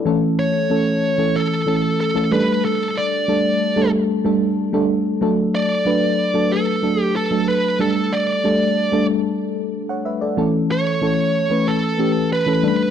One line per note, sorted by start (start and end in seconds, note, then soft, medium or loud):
0.00 0.21 E4 medium
0.05 0.50 E3 medium
0.05 0.50 A3 medium
0.05 0.50 C#4 medium
0.05 0.51 A4 loud
0.39 1.38 C#5 medium
0.70 1.03 E3 medium
0.70 1.04 A3 medium
0.70 1.04 C#4 medium
0.70 1.04 A4 medium
1.18 1.52 E3 medium
1.18 1.52 A3 medium
1.18 1.52 C#4 medium
1.18 1.52 A4 medium
1.36 1.99 A4 medium
1.66 2.00 E3 medium
1.66 2.00 A3 medium
1.66 2.00 C#4 medium
1.66 2.01 A4 medium
2.01 2.32 A4 medium
2.14 2.31 E3 medium
2.14 2.30 A3 medium
2.14 2.32 C#4 medium
2.14 2.31 A4 medium
2.31 3.09 G3 medium
2.31 3.09 A3 medium
2.31 3.09 D4 medium
2.31 3.09 A4 medium
2.31 2.62 B4 loud
2.65 2.98 A4 loud
2.97 3.90 D5 loud
3.28 3.62 G3 medium
3.28 3.62 A3 medium
3.28 3.62 D4 medium
3.28 3.62 A4 medium
3.76 4.10 G3 medium
3.76 4.10 A3 medium
3.76 4.10 D4 medium
3.76 4.10 A4 medium
4.24 4.58 G3 medium
4.24 4.58 A3 medium
4.24 4.59 D4 medium
4.24 4.59 A4 medium
4.73 5.07 G3 medium
4.73 5.07 A3 medium
4.73 5.07 D4 medium
4.73 5.07 A4 medium
5.21 5.66 F#3 medium
5.21 5.66 A3 medium
5.21 5.66 D4 medium
5.21 5.67 A4 loud
5.55 6.54 D5 loud
5.85 6.19 F#3 medium
5.85 6.19 A3 medium
5.85 6.20 D4 medium
5.85 6.20 B4 medium
6.34 6.68 F#3 medium
6.34 6.68 A3 medium
6.34 6.68 D4 medium
6.34 6.68 A4 medium
6.52 7.02 A4 medium
6.82 7.16 F#3 medium
6.82 7.16 A3 medium
6.82 7.17 D4 medium
6.82 7.17 A4 medium
7.02 7.15 G4 medium
7.16 7.46 A4 medium
7.31 7.65 F#3 medium
7.31 7.65 A3 medium
7.31 7.65 D4 medium
7.31 7.65 A4 medium
7.48 7.81 B4 medium
7.79 8.24 G3 medium
7.79 8.24 A3 medium
7.79 8.24 D4 medium
7.79 8.25 A4 medium
7.79 8.13 A4 loud
8.13 9.05 D5 loud
8.44 8.78 G3 medium
8.44 8.78 A3 medium
8.44 8.78 D4 medium
8.44 8.78 A4 medium
8.92 9.26 G3 medium
8.92 9.26 A3 medium
8.92 9.26 D4 medium
8.92 9.26 A4 loud
9.89 10.05 C#5 medium
9.89 10.05 F#5 medium
10.05 10.21 B4 medium
10.05 10.21 E5 medium
10.21 10.37 A4 medium
10.21 10.52 D5 medium
10.37 10.82 E3 medium
10.37 10.82 A3 medium
10.37 10.82 C#4 medium
10.37 10.83 A4 medium
10.72 11.71 C#5 medium
11.01 11.35 E3 medium
11.01 11.36 A3 medium
11.01 11.36 C#4 medium
11.01 11.36 A4 medium
11.50 11.84 E3 medium
11.50 11.84 A3 medium
11.50 11.84 C#4 medium
11.50 11.84 B4 medium
11.68 12.28 A4 medium
11.98 12.32 E3 medium
11.98 12.32 A3 medium
11.98 12.33 C#4 medium
11.98 12.33 G4 medium
12.33 12.90 B4 medium
12.46 12.63 E3 medium
12.46 12.62 A3 medium
12.46 12.64 C#4 medium
12.46 12.63 A4 medium
12.63 12.90 G3 medium
12.63 12.90 A3 medium
12.63 12.90 D4 medium
12.63 12.90 A4 medium